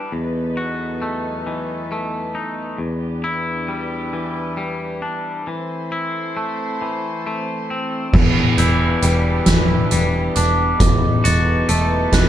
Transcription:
0.00 0.11 E3 soft
0.00 0.12 G3 soft
0.00 5.42 B3 soft
0.00 0.12 D4 soft
0.00 0.11 E4 soft
0.00 2.75 B4 soft
0.11 2.76 E2 soft
0.11 2.35 E2 soft
0.11 2.77 F#3 soft
0.11 2.76 D#4 soft
0.11 2.76 A4 soft
0.57 2.80 F#4 soft
1.02 1.91 A3 soft
1.47 2.80 E3 soft
1.92 2.80 A3 soft
2.35 2.79 D#4 soft
2.78 5.05 E2 soft
2.78 5.45 E3 soft
2.78 5.45 D4 soft
2.78 5.45 G4 soft
2.78 5.45 B4 soft
3.24 5.91 E4 soft
3.68 4.56 G3 soft
4.13 5.47 E3 soft
4.57 5.47 G3 soft
5.02 5.47 D4 soft
5.47 6.80 E3 soft
5.47 8.12 E3 soft
5.47 8.13 A3 soft
5.47 8.12 C4 soft
5.47 8.12 A4 soft
5.47 8.12 C5 soft
5.92 8.14 E4 soft
6.37 7.25 A3 soft
6.82 8.14 E3 soft
7.26 8.15 A3 soft
7.70 8.14 C4 soft
8.13 8.50 E1 medium
8.13 10.37 E2 medium
8.13 10.77 E3 medium
8.13 12.29 B3 medium
8.13 10.77 D4 medium
8.13 10.78 G4 medium
8.13 10.78 B4 medium
8.13 kick medium
8.13 crash medium
8.58 8.95 E1 medium
8.58 10.81 E4 medium
8.58 9.47 G6 medium
8.58 closed hi-hat medium
9.02 9.40 E1 medium
9.02 9.91 G3 medium
9.02 closed hi-hat medium
9.46 9.84 E1 medium
9.46 10.81 E3 soft
9.46 10.36 E6 medium
9.46 kick medium
9.46 snare medium
9.46 closed hi-hat medium
9.91 10.29 E1 medium
9.91 10.81 G3 medium
9.91 closed hi-hat medium
10.35 10.73 E1 medium
10.35 10.81 D4 soft
10.35 10.80 D6 medium
10.35 closed hi-hat medium
10.80 11.17 E1 medium
10.80 12.29 E2 medium
10.80 12.29 F#3 medium
10.80 12.29 D#4 medium
10.80 12.29 A4 medium
10.80 12.29 B4 medium
10.80 kick medium
10.80 closed hi-hat medium
11.24 11.62 E1 medium
11.24 12.29 F#4 medium
11.24 12.14 A6 medium
11.24 closed hi-hat medium
11.69 12.06 E1 medium
11.69 12.29 A3 medium
11.69 closed hi-hat medium
12.12 12.29 E1 medium
12.12 12.29 E3 medium
12.12 12.29 F#6 medium
12.12 kick medium
12.12 snare medium
12.12 closed hi-hat medium

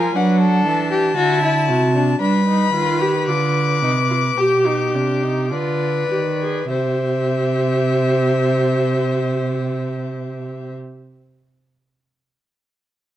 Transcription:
0.00 0.14 F3 medium
0.00 0.17 F4 loud
0.00 0.14 A#4 medium
0.00 0.17 G#5 loud
0.15 0.65 F#3 medium
0.15 1.16 D4 medium
0.15 0.39 B4 medium
0.15 0.66 F#5 medium
0.40 0.90 A4 loud
0.66 1.16 E3 medium
0.66 2.18 A5 loud
0.91 1.15 G4 loud
1.16 1.70 D3 medium
1.16 1.68 E4 medium
1.16 1.42 F#4 loud
1.43 1.94 E4 medium
1.69 2.20 C3 medium
1.69 2.19 F#4 medium
1.94 2.19 D4 medium
2.20 2.73 G3 medium
2.20 2.46 D4 medium
2.20 4.39 B4 medium
2.20 3.25 B5 loud
2.48 2.74 D#4 medium
2.74 3.28 D#3 medium
2.74 3.02 F4 loud
3.01 3.30 G4 medium
3.27 3.83 D3 medium
3.27 3.82 F4 medium
3.27 5.54 D6 loud
3.82 4.37 C3 medium
3.82 3.91 D#4 medium
4.10 4.18 F4 medium
4.37 4.95 B2 medium
4.37 5.52 G4 medium
4.37 4.67 G4 medium
4.66 4.96 D#4 medium
4.94 5.53 C3 medium
4.94 5.25 D4 medium
5.23 5.51 D#4 medium
5.51 6.10 D3 medium
5.51 6.09 F4 medium
5.51 6.68 B4 loud
5.51 6.69 D5 medium
6.10 6.69 D#3 medium
6.10 6.18 G4 medium
6.40 6.69 G#4 medium
6.69 10.74 C3 medium
6.69 10.74 G4 medium
6.69 10.75 C5 medium
6.69 10.74 E5 medium

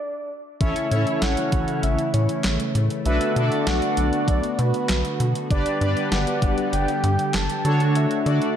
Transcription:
0.00 0.30 D5 medium
0.61 0.75 A1 loud
0.61 3.03 C#3 medium
0.61 3.03 E3 medium
0.61 5.47 A3 medium
0.61 0.87 C#4 medium
0.61 0.87 E4 medium
0.61 3.03 E4 medium
0.61 0.87 A4 medium
0.61 0.87 C#5 medium
0.61 1.24 E5 loud
0.61 kick loud
0.61 closed hi-hat medium
0.76 closed hi-hat medium
0.91 1.05 A2 loud
0.91 1.97 C#4 medium
0.91 1.97 E4 medium
0.91 1.97 A4 medium
0.91 1.97 C#5 medium
0.91 closed hi-hat medium
1.07 closed hi-hat medium
1.22 1.36 A1 loud
1.22 1.85 F#5 loud
1.22 snare loud
1.22 closed hi-hat medium
1.37 closed hi-hat medium
1.52 1.66 A1 loud
1.52 kick medium
1.52 closed hi-hat medium
1.68 closed hi-hat medium
1.83 1.97 A1 loud
1.83 2.13 E5 loud
1.83 closed hi-hat medium
1.99 closed hi-hat medium
2.14 2.28 A2 loud
2.14 2.71 C#5 medium
2.14 closed hi-hat medium
2.29 closed hi-hat medium
2.44 2.58 A1 loud
2.44 snare loud
2.44 clap medium
2.44 closed hi-hat medium
2.60 closed hi-hat medium
2.75 2.89 A2 loud
2.75 closed hi-hat medium
2.90 closed hi-hat medium
3.06 3.19 B1 loud
3.06 8.56 D3 medium
3.06 5.48 B3 medium
3.06 3.32 D4 medium
3.06 3.32 F#4 medium
3.06 5.48 F#4 medium
3.06 3.32 A4 medium
3.06 3.32 B4 medium
3.06 3.68 E5 loud
3.06 closed hi-hat medium
3.21 closed hi-hat medium
3.36 3.50 B2 loud
3.36 4.42 D4 medium
3.36 4.42 F#4 medium
3.36 4.42 A4 medium
3.36 4.42 D5 medium
3.36 closed hi-hat medium
3.52 closed hi-hat medium
3.67 3.81 B1 loud
3.67 4.30 F#5 loud
3.67 snare loud
3.67 closed hi-hat medium
3.82 closed hi-hat medium
3.97 4.11 B1 loud
3.97 closed hi-hat medium
4.13 closed hi-hat medium
4.28 4.42 B1 loud
4.28 4.60 D5 loud
4.28 kick loud
4.28 closed hi-hat medium
4.43 closed hi-hat medium
4.59 4.73 B2 loud
4.59 5.20 B4 medium
4.59 closed hi-hat medium
4.74 closed hi-hat medium
4.89 5.03 B1 loud
4.89 snare loud
4.89 clap loud
4.89 closed hi-hat medium
5.05 closed hi-hat medium
5.20 5.34 B2 loud
5.20 closed hi-hat medium
5.35 closed hi-hat medium
5.50 5.64 G1 loud
5.50 7.63 G3 medium
5.50 7.63 B3 medium
5.50 5.77 D4 medium
5.50 5.77 G4 medium
5.50 7.63 G4 medium
5.50 5.77 B4 medium
5.50 5.77 D5 medium
5.50 6.08 D5 loud
5.50 kick loud
5.50 closed hi-hat medium
5.66 closed hi-hat medium
5.81 5.95 G2 loud
5.81 6.87 D4 medium
5.81 6.87 G4 medium
5.81 6.87 B4 medium
5.81 6.87 D5 medium
5.81 closed hi-hat medium
5.97 closed hi-hat medium
6.12 6.26 G1 loud
6.12 6.75 F#5 loud
6.12 snare loud
6.12 closed hi-hat medium
6.27 closed hi-hat medium
6.42 6.56 G1 loud
6.42 kick loud
6.42 closed hi-hat medium
6.58 closed hi-hat medium
6.73 6.87 G1 loud
6.73 7.36 G5 loud
6.73 closed hi-hat medium
6.88 closed hi-hat medium
7.04 7.17 G2 loud
7.04 closed hi-hat medium
7.19 closed hi-hat medium
7.34 7.48 G1 loud
7.34 7.97 A5 loud
7.34 snare loud
7.34 clap medium
7.34 closed hi-hat medium
7.50 closed hi-hat medium
7.65 8.07 D3 loud
7.65 8.56 A3 medium
7.65 8.56 D4 medium
7.65 8.18 D4 medium
7.65 8.56 F#4 medium
7.65 8.18 F#4 medium
7.65 8.18 A4 medium
7.65 8.18 C#5 medium
7.65 closed hi-hat medium
7.80 closed hi-hat medium
7.95 8.56 E5 loud
7.95 closed hi-hat medium
8.11 closed hi-hat medium
8.26 8.40 D3 loud
8.26 8.56 D4 medium
8.26 8.56 F#4 medium
8.26 8.56 A4 medium
8.26 8.56 D5 medium
8.26 closed hi-hat medium
8.42 closed hi-hat medium

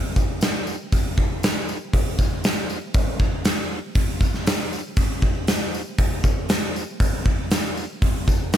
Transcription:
0.16 kick medium
0.16 tambourine medium
0.41 snare loud
0.41 open hi-hat soft
0.41 tambourine medium
0.67 tambourine medium
0.92 kick loud
0.92 open hi-hat medium
0.92 tambourine medium
1.18 kick medium
1.43 snare loud
1.43 open hi-hat medium
1.43 tambourine medium
1.69 tambourine medium
1.93 kick medium
1.93 open hi-hat medium
2.19 kick medium
2.19 tambourine medium
2.44 snare loud
2.44 open hi-hat medium
2.44 tambourine medium
2.69 tambourine medium
2.94 kick loud
2.94 open hi-hat medium
2.94 tambourine medium
3.19 kick medium
3.19 tambourine soft
3.44 snare loud
3.44 open hi-hat medium
3.44 tambourine medium
3.95 kick loud
3.95 open hi-hat medium
3.95 tambourine soft
4.21 kick medium
4.21 tambourine medium
4.34 snare soft
4.46 snare loud
4.46 open hi-hat medium
4.46 tambourine medium
4.73 tambourine medium
4.97 kick loud
4.97 open hi-hat medium
4.97 tambourine medium
5.22 kick medium
5.47 snare loud
5.47 open hi-hat medium
5.47 tambourine medium
5.75 tambourine medium
5.98 kick medium
5.98 open hi-hat medium
6.24 kick medium
6.24 tambourine medium
6.49 snare loud
6.49 open hi-hat medium
6.49 tambourine medium
6.76 tambourine medium
7.00 kick loud
7.00 open hi-hat medium
7.00 tambourine medium
7.26 kick medium
7.51 snare loud
7.51 open hi-hat medium
7.51 tambourine medium
7.77 tambourine medium
8.02 kick loud
8.02 open hi-hat medium
8.28 kick medium
8.28 tambourine medium
8.53 snare loud
8.53 open hi-hat medium

